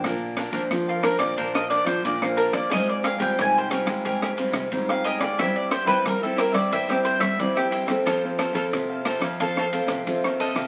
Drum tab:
RD |x-xxx-xxx-xxx-xx|x-xxx-xxx-xxx-xx|x-xxx-xxx-xxx-xx|x-xxx-xxx-xxx-xx|
SD |r-r-r-rr-r-r-r-r|r-r-r-rr-r-r-r-r|r-r-r-rr-r-r-r-r|r-r-r-rr-r-r-r-r|
BD |o--oo--oo--oo--o|o--oo--oo--oo--o|o--oo--oo--oo--o|o--oo--oo--oo--o|